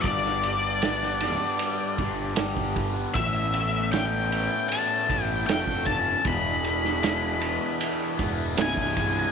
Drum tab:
RD |x-x-x-x-x-x-x-x-|x-x-x-x-x-x-x-x-|x-x-x-x-x-x-x-x-|
SD |-o--ooo-----o---|----o-------o---|---oo-------o---|
BD |o---------o--oo-|o---------o--oo-|o---------o--oo-|